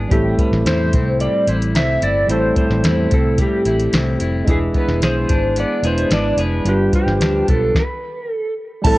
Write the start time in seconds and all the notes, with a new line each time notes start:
Already playing: E3 B3 D4 G#4
0.08 A1 A2 G3 C4 E4 G4, kick, closed hi-hat
0.13 A4
0.38 G3 B4, kick, closed hi-hat
0.52 A1, snare
0.65 E2 E4 C5, snare, closed hi-hat
0.93 C2 C4, kick, closed hi-hat
1.20 G3 D5, closed hi-hat
1.47 A1 E4 C5, closed hi-hat
1.62 closed hi-hat
1.75 C2 C4 E5, snare, closed hi-hat
2.02 G1 E4 D5, closed hi-hat
2.27 A1 A2 G3 C4 E4, closed hi-hat
2.31 A4 C5
2.56 G3 C5, kick, closed hi-hat
2.70 A1, snare
2.83 E2 E4, snare, closed hi-hat
3.10 C2 C4 A4, kick, closed hi-hat
3.38 G3 G4, kick, closed hi-hat
3.65 A1 E4, closed hi-hat
3.80 closed hi-hat
3.93 C2 C4, snare, closed hi-hat
4.20 F1 E4, closed hi-hat
4.44 E1 E3 G#3 D4 E4, kick, closed hi-hat
4.50 G#4
4.74 B3 B4, kick, closed hi-hat
4.88 E1, snare
5.02 B1 G#4 C5, snare, closed hi-hat
5.29 G#1 D4, kick, closed hi-hat
5.56 B3 D5, closed hi-hat
5.82 E1 G#3 D4 E4 G#4 B4, closed hi-hat
5.87 C5
5.98 closed hi-hat
6.10 G#1 D4 D5, snare, closed hi-hat
6.37 F1 G#4 B4, closed hi-hat
6.64 G1 G2 G3 D4 F4, closed hi-hat
6.69 G4 B4
6.93 F3 G4, kick, closed hi-hat
7.06 G1, snare
7.19 D2 D4, snare, closed hi-hat
7.48 B1 B3 A4, kick, closed hi-hat
7.75 B4, kick, snare
8.32 A4
8.82 A1 A2 G3 C4 E4 A5, kick, closed hi-hat, crash
8.87 A4